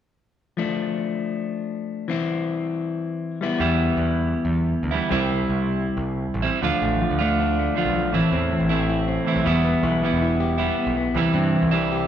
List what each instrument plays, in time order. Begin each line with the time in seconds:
0.57 distorted electric guitar F3 A3 D4
2.08 distorted electric guitar E3 C4 E4
3.41 distorted electric guitar G3 B3 E4
3.58 picked electric bass E2, overdriven electric guitar E3 G3 B3 E4
3.97 picked electric bass E2
4.45 picked electric bass E2
4.83 picked electric bass D2
4.91 overdriven electric guitar E3 G3 B3 E4
5.09 picked electric bass C2, overdriven electric guitar C3 G3 C4 E4, distorted electric guitar G3 C4 E4
5.49 picked electric bass C2
5.97 picked electric bass C2
6.34 picked electric bass A1
6.42 overdriven electric guitar C3 G3 C4 E4
6.61 picked electric bass D2, overdriven electric guitar D3 A3 D4 F4, distorted electric guitar F3
6.82 picked electric bass A1, distorted electric guitar A3
7.01 distorted electric guitar F3
7.10 picked electric bass D2
7.19 overdriven electric guitar D3 A3 D4 F4, distorted electric guitar A3
7.40 distorted electric guitar D4
7.59 distorted electric guitar A3
7.75 overdriven electric guitar D3 A3 D4 F4, distorted electric guitar F3
7.86 picked electric bass B1
7.95 distorted electric guitar F3
8.12 picked electric bass A1, overdriven electric guitar A2 E3 A3 C4 E4, distorted electric guitar E3
8.32 picked electric bass E2, distorted electric guitar C4
8.52 distorted electric guitar E3
8.60 picked electric bass A1
8.69 overdriven electric guitar A2 E3 A3 C4 E4, distorted electric guitar C4
8.89 distorted electric guitar E4
9.08 distorted electric guitar C4
9.25 overdriven electric guitar A2 E3 A3 C4 E4, distorted electric guitar E3
9.36 picked electric bass B1
9.44 picked electric bass E1, overdriven electric guitar E3 G3 B3 E4, distorted electric guitar B3
9.64 distorted electric guitar B3
9.83 picked electric bass B1, distorted electric guitar E4
10.02 overdriven electric guitar E3 G3 B3 E4, distorted electric guitar B3
10.12 picked electric bass E1
10.22 distorted electric guitar E4
10.40 distorted electric guitar G4
10.58 overdriven electric guitar E3 G3 B3 E4, distorted electric guitar E4
10.79 distorted electric guitar B3
10.87 picked electric bass B1
10.97 distorted electric guitar B3
11.14 picked electric bass C2, overdriven electric guitar C3 E3 G3 C4 E4, distorted electric guitar E3
11.34 picked electric bass G2, distorted electric guitar C4
11.54 distorted electric guitar E3
11.62 picked electric bass C2
11.71 overdriven electric guitar C3 E3 G3 C4 E4, distorted electric guitar D4
11.92 distorted electric guitar G4